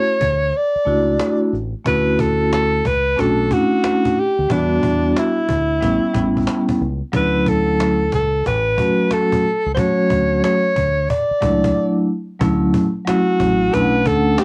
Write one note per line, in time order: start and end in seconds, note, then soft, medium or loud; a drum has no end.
0.00 0.10 F#4 medium
0.00 0.58 C#5 loud
0.21 0.51 D2 medium
0.21 cajon bass medium
0.53 1.54 D5 medium
0.53 cajon slap medium
0.75 muted fingered electric bass stroke soft
0.85 1.17 C#2 medium
0.85 1.52 A3 medium
0.85 1.52 D4 medium
0.85 1.53 E4 medium
0.85 1.53 F#4 medium
0.85 cajon slap soft
1.19 cajon slap medium
1.53 1.73 A1 medium
1.53 cajon slap soft
1.85 2.81 D2 loud
1.85 2.73 A3 medium
1.85 2.73 C#4 medium
1.85 2.74 E4 medium
1.85 2.74 F#4 medium
1.85 2.22 B4 loud
1.85 cajon bass loud
2.19 2.53 A4 medium
2.19 cajon bass medium
2.53 2.88 A4 loud
2.53 cajon slap medium
2.85 3.15 C#2 medium
2.85 3.22 B4 medium
2.85 cajon bass medium
3.16 3.49 B1 loud
3.16 3.45 A3 medium
3.16 3.46 C#4 medium
3.16 3.46 D4 medium
3.16 3.46 F#4 medium
3.16 3.54 A4 medium
3.16 cajon bass medium
3.16 cajon slap medium
3.49 4.16 A3 medium
3.49 4.16 C#4 medium
3.49 4.17 D4 medium
3.49 4.17 E4 medium
3.49 4.20 F#4 medium
3.49 cajon bass medium
3.84 cajon slap loud
4.05 cajon bass medium
4.19 4.54 G4 medium
4.19 cajon slap soft
4.39 4.49 D2 medium
4.48 4.80 E2 medium
4.48 5.37 G3 medium
4.48 5.37 B3 medium
4.48 5.38 D4 medium
4.48 5.17 D4 medium
4.48 5.38 F#4 medium
4.48 cajon bass loud
4.83 5.13 E2 loud
4.83 cajon bass medium
5.16 6.78 E4 medium
5.16 cajon slap medium
5.38 cajon slap soft
5.49 5.79 D2 medium
5.49 cajon bass medium
5.81 6.02 A1 loud
5.81 6.09 G3 medium
5.81 6.10 B3 medium
5.81 6.10 C#4 medium
5.81 6.11 E4 medium
5.81 cajon bass medium
5.81 cajon slap medium
6.13 6.45 A1 medium
6.13 6.80 G3 medium
6.13 6.80 B3 medium
6.13 6.81 C#4 medium
6.13 6.81 E4 medium
6.13 cajon bass medium
6.37 cajon bass medium
6.47 cajon slap loud
6.69 cajon bass medium
6.81 7.01 C#2 medium
6.81 cajon slap soft
7.12 8.08 D2 loud
7.12 8.01 F#3 medium
7.12 8.01 A3 medium
7.12 8.01 C#4 medium
7.12 8.02 E4 medium
7.12 7.50 B4 medium
7.12 cajon bass loud
7.46 8.13 A4 medium
7.46 cajon bass medium
7.80 cajon slap medium
8.12 8.43 C#2 medium
8.12 8.44 A4 medium
8.12 cajon bass medium
8.44 8.76 A1 loud
8.44 9.15 B4 medium
8.44 cajon bass medium
8.44 cajon slap medium
8.77 9.43 F#3 medium
8.77 9.44 A3 medium
8.77 9.44 C#4 medium
8.77 9.44 F#4 medium
8.77 cajon bass medium
9.11 9.73 A4 medium
9.11 cajon slap medium
9.32 cajon bass medium
9.46 cajon slap soft
9.66 9.76 C#2 medium
9.74 10.64 F#3 medium
9.74 10.65 A3 medium
9.74 10.65 C#4 medium
9.74 10.65 F#4 medium
9.74 9.81 C5 medium
9.74 cajon bass loud
9.79 10.44 C#5 loud
10.10 10.41 D2 medium
10.10 cajon bass medium
10.44 11.06 C#5 medium
10.44 cajon slap loud
10.76 11.07 D2 medium
10.76 cajon bass medium
11.08 12.04 D5 medium
11.08 cajon bass medium
11.08 cajon slap medium
11.31 muted fingered electric bass stroke soft
11.41 11.72 C#2 medium
11.41 12.07 F#3 medium
11.41 12.07 A3 medium
11.41 12.08 D4 medium
11.41 12.08 E4 medium
11.41 cajon bass medium
11.64 cajon bass medium
12.40 12.71 D2 loud
12.40 12.84 F#3 medium
12.40 12.84 A3 medium
12.40 12.85 C#4 medium
12.40 12.85 E4 medium
12.40 cajon bass loud
12.74 cajon bass medium
13.05 13.72 F#3 medium
13.05 13.70 A3 medium
13.05 13.71 C#4 medium
13.05 13.73 E4 medium
13.05 13.76 F#4 medium
13.05 cajon slap loud
13.40 13.70 A1 medium
13.40 cajon bass medium
13.72 14.04 B1 loud
13.72 14.44 A3 medium
13.72 14.44 C#4 medium
13.72 14.44 D4 medium
13.72 13.82 E4 medium
13.72 14.09 B4 loud
13.72 cajon bass medium
13.72 cajon slap medium
13.80 14.44 F#5 medium
14.05 14.36 D2 medium
14.05 14.40 A4 loud
14.05 cajon bass medium
14.38 14.44 G4 medium
14.38 cajon slap loud